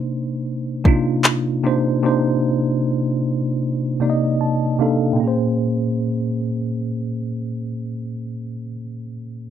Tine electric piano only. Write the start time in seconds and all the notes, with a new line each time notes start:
Already playing: C3 A#3 D4 D#4 C5
0.84 C3 A#3 D4 D#4 F4
1.63 C3 A#3 D4 D#4 C5
2.02 C3 A#3 D4 D#4 C5
4.00 C3 A#3 D#4 D5
4.10 D#5
4.41 A5
4.79 C3 A#3 D4 D#4 A4 F5
5.13 A#2 A#3
5.20 C#4 G#4
5.28 C5